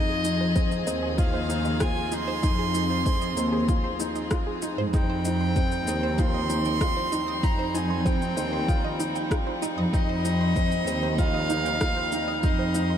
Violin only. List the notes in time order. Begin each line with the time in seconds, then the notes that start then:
Already playing: D#5
1.19 F5
1.82 G#5
2.13 C6
4.95 G5
6.19 C6
7.44 A#5
7.74 G#5
8.06 G5
9.95 D#5
11.19 F5
12.44 D#5